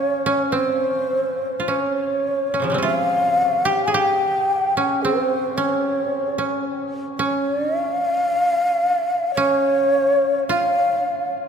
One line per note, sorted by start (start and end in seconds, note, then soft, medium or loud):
0.00 0.26 C#4 medium
0.00 0.53 F4 medium
0.00 0.46 C#5 medium
0.26 0.58 C#4 medium
0.51 2.60 C4 medium
0.51 1.61 C5 medium
1.60 2.82 F4 soft
1.68 2.53 C#4 medium
1.68 2.78 C#5 medium
2.54 2.78 C#4 soft
2.60 2.84 C3 soft
2.60 2.76 C#3 soft
2.60 3.71 F3 soft
2.70 2.84 G3 soft
2.70 3.71 G#3 soft
2.74 4.83 C4 soft
2.74 4.77 C#4 soft
2.82 5.01 F4 medium
2.82 2.98 E5 medium
2.98 3.67 F5 medium
3.65 3.94 G4 medium
3.65 3.84 G5 medium
3.85 4.00 G#4 medium
3.85 3.94 G#5 medium
3.93 5.98 G4 medium
3.93 5.04 G5 medium
4.77 5.11 C#4 medium
5.02 5.64 C4 medium
5.02 5.58 C5 medium
5.57 6.03 C#4 medium
5.57 6.66 C#5 medium
6.03 6.38 C4 medium
6.38 7.19 C#4 soft
7.19 7.51 C#4 medium
7.19 7.51 C#5 loud
7.51 7.64 D4 medium
7.51 7.64 D5 loud
7.64 7.76 D#4 medium
7.64 7.76 D#5 loud
7.76 7.88 E4 medium
7.76 7.88 E5 loud
7.88 9.38 F4 medium
7.88 9.32 F5 loud
9.34 11.06 C#4 medium
9.34 10.44 C#5 loud
10.49 11.06 F4 medium
10.49 11.33 F5 medium
11.06 11.48 C#4 medium